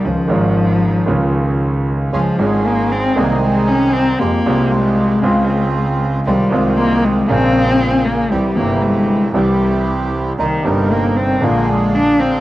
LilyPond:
<<
  \new Staff \with { instrumentName = "Bandoneon" } { \time 4/4 \key des \lydian \tempo 4 = 116 r1 | <des' f' aes'>8 <des' f' aes'>4. <c' ees' aes'>2 | <aes f' g'>8 <aes f' g'>4. <c' f'>2 | <aes c' f'>8 <aes c' f'>4. <des bes aes'>2 |
<c' e' g'>8 <c' e' g'>4. <c' e' g'>2 | <c' ees' bes'>8 <c' ees' bes'>4. <bes d' aes'>2 | }
  \new Staff \with { instrumentName = "Cello" } { \time 4/4 \key des \lydian f2. r4 | f8 aes8 bes8 c'8 bes8 aes8 des'8 c'8 | bes4 aes2~ aes8 r8 | g8 aes8 bes8 aes8 c'4. bes8 |
g8 bes8 aes4 g4. r8 | ees8 g8 bes8 c'8 bes8 aes8 d'8 c'8 | }
  \new Staff \with { instrumentName = "Grand piano" } { \clef bass \time 4/4 \key des \lydian <des, des ees aes des' f'>8 <aes,, aes, ees aes des' f'>4. <des, des ees aes des' f'>2 | <des, des f aes des' aes'>8 <aes,, aes, f aes des' aes'>4. <c, c ees aes c' aes'>2 | <f, f aes c' g'>8 <c, c f aes c' g'>4. <des, des aes c' f'>2 | <c, c ees aes c' f'>8 <c, c ees aes c' f'>4. <bes,, bes, des aes bes f'>2 |
<c, c e g e'>8 <g,, c e e' g'>4. <c, c e g e'>2 | <c, c g bes ees'>8 <g,, g, c g bes ees'>4. <bes,, bes, d aes bes f'>2 | }
  \new Staff \with { instrumentName = "Double bass" } { \clef bass \time 4/4 \key des \lydian des,8 aes,,4. des,2 | des,8 aes,,4. c,2 | f,8 c,4. des,2 | c,8 c,4. bes,,2 |
c,8 g,,4. c,2 | c,8 g,,4. bes,,2 | }
>>